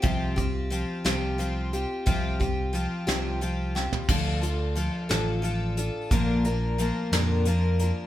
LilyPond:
<<
  \new Staff \with { instrumentName = "Twelve-string acoustic guitar" } { \time 6/8 \key c \mixolydian \tempo 4. = 59 <c f c' f' g'>8 <c' f' g'>8 <f c' f' g'>8 <c f c' f' g'>8 <f c' f' g'>8 <c' f' g'>8 | <c f c' f' g'>8 <c' f' g'>8 <f c' f' g'>8 <c f c' f' g'>8 <f c' f' g'>8 <c' f' g'>8 | <d f d' f' a'>8 <d' f' a'>8 <f d' f' a'>8 <d f d' f' a'>8 <f d' f' a'>8 <d' f' a'>8 | <bes, d f bes d' bes'>8 <f bes d' bes'>8 <f bes d' bes'>8 <bes, d f bes d' bes'>8 <f bes d' bes'>8 <f bes d' bes'>8 | }
  \new Staff \with { instrumentName = "Fingered electric bass" } { \clef bass \time 6/8 \key c \mixolydian c,4. c,4. | c,4. c,4. | d,4. a,,4. | bes,,4. f,4. | }
  \new DrumStaff \with { instrumentName = "Drums" } \drummode { \time 6/8 <hh bd>8 <hh bd>8 hh8 <hh sn>8 hh8 hh8 | <hh bd>8 <hh bd>8 hh8 <hh sn>8 hh8 sn16 tomfh16 | <cymc bd>8 hh8 hh8 <hh sn>8 hh8 hh8 | <hh bd>8 hh8 hh8 <hh sn>8 hh8 hh8 | }
>>